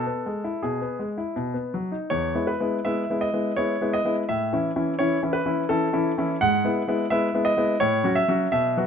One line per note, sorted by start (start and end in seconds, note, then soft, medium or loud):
0.00 0.62 A4 medium
0.07 0.26 B3 soft
0.26 0.45 G#3 soft
0.44 0.64 E4 soft
0.63 0.81 B2 soft
0.63 1.07 G#4 soft
0.82 1.01 B3 soft
0.99 1.19 G#3 soft
1.18 1.36 E4 soft
1.36 1.54 B2 soft
1.54 1.74 B3 soft
1.74 1.94 F#3 soft
1.92 2.11 D#4 soft
2.10 2.35 E2 soft
2.10 2.47 C#5 medium
2.34 2.52 G#3 soft
2.34 2.53 B3 soft
2.34 2.53 E4 soft
2.47 2.84 B4 soft
2.60 2.78 G#3 soft
2.60 2.78 B3 soft
2.60 2.78 E4 soft
2.85 3.03 G#3 soft
2.85 3.03 B3 soft
2.85 3.03 E4 soft
2.85 3.17 E5 medium
3.10 3.27 G#3 soft
3.10 3.27 B3 soft
3.10 3.28 E4 soft
3.21 3.57 D#5 medium
3.33 3.51 G#3 soft
3.33 3.51 B3 soft
3.33 3.51 E4 soft
3.56 3.74 G#3 soft
3.56 3.75 B3 soft
3.56 3.75 E4 soft
3.56 3.93 C#5 medium
3.81 3.98 G#3 soft
3.81 3.99 B3 soft
3.81 3.99 E4 soft
3.93 4.15 D#5 medium
4.05 4.22 G#3 soft
4.05 4.22 B3 soft
4.05 4.23 E4 soft
4.29 4.52 A2 soft
4.29 4.95 E5 medium
4.53 4.70 E3 soft
4.53 4.70 C#4 soft
4.53 4.70 E4 soft
4.76 4.93 E3 soft
4.76 4.93 C#4 soft
4.76 4.93 E4 soft
4.99 5.16 E3 soft
4.99 5.17 C#4 soft
4.99 5.17 E4 soft
4.99 5.20 C#5 medium
5.23 5.39 E3 soft
5.23 5.40 C#4 soft
5.23 5.40 E4 soft
5.33 5.69 B4 medium
5.45 5.63 E3 soft
5.45 5.63 C#4 soft
5.45 5.63 E4 soft
5.69 5.87 E3 soft
5.69 5.87 C#4 soft
5.69 5.87 E4 soft
5.69 6.37 A4 medium
5.93 6.10 E3 soft
5.93 6.11 C#4 soft
5.93 6.11 E4 soft
6.18 6.35 E3 soft
6.18 6.35 C#4 soft
6.18 6.35 E4 soft
6.41 6.64 G#2 soft
6.41 7.07 F#5 medium
6.64 6.81 G#3 soft
6.64 6.81 B3 soft
6.64 6.82 E4 soft
6.88 7.04 G#3 soft
6.88 7.05 B3 soft
6.88 7.05 E4 soft
7.10 7.28 G#3 soft
7.10 7.28 B3 soft
7.10 7.28 E4 soft
7.10 7.42 E5 medium
7.34 7.51 G#3 soft
7.34 7.51 B3 soft
7.34 7.51 E4 soft
7.45 7.77 D#5 medium
7.57 7.74 G#3 soft
7.57 7.75 B3 soft
7.57 7.75 E4 soft
7.80 8.04 A2 medium
7.80 8.16 C#5 medium
8.04 8.22 F#3 soft
8.04 8.22 C#4 soft
8.04 8.22 F#4 soft
8.15 8.50 E5 medium
8.28 8.46 F#3 soft
8.28 8.46 C#4 soft
8.28 8.46 F#4 soft
8.52 8.76 B2 soft
8.52 8.87 E5 medium
8.77 8.87 F#3 soft
8.77 8.87 B3 soft
8.77 8.87 F#4 soft